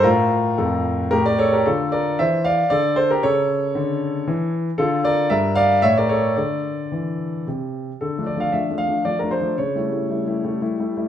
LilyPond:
<<
  \new Staff \with { instrumentName = "Grand piano" } { \time 3/4 \key d \minor \tempo 4 = 114 <f' bes'>4 <f' a'>4 <g' bes'>16 <bes' d''>16 <a' cis''>16 <g' bes'>16 | <f' a'>8 <bes' d''>8 <c'' e''>8 <d'' f''>8 <a' d''>8 <a' c''>16 <g' bes'>16 | <a' cis''>2~ <a' cis''>8 r8 | <f' a'>8 <bes' d''>8 <bes' e''>8 <d'' f''>8 <cis'' e''>16 <bes' d''>16 <a' cis''>8 |
<a' d''>2 r4 | a'8 d''16 f''16 e''8 f''8 d''16 bes'16 c''8 | cis''2~ cis''8 r8 | }
  \new Staff \with { instrumentName = "Grand piano" } { \clef bass \time 3/4 \key d \minor a,4 f,4 a,4 | d4 e4 d4 | cis4 d4 e4 | d4 g,4 a,4 |
d4 e4 c4 | \tuplet 3/2 { d8 <f a d'>8 <f a d'>8 <f a d'>8 <f a d'>8 <f a d'>8 <f a d'>8 <f a d'>8 <f a d'>8 } | \tuplet 3/2 { cis8 <g a e'>8 <g a e'>8 <g a e'>8 <g a e'>8 <g a e'>8 <g a e'>8 <g a e'>8 <g a e'>8 } | }
>>